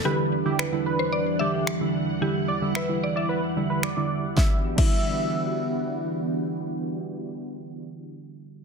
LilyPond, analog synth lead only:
\new Staff \with { instrumentName = "Analog synth lead" } { \time 4/4 \key e \minor \tempo 4 = 111 b'16 r8 g'16 r8 b'8. r16 d''16 r4 r16 | r8 d''16 r16 e''16 r8 d''16 b'16 r8 b'16 d''8. r16 | e''16 r8 e''2~ e''16 r4 | r1 | }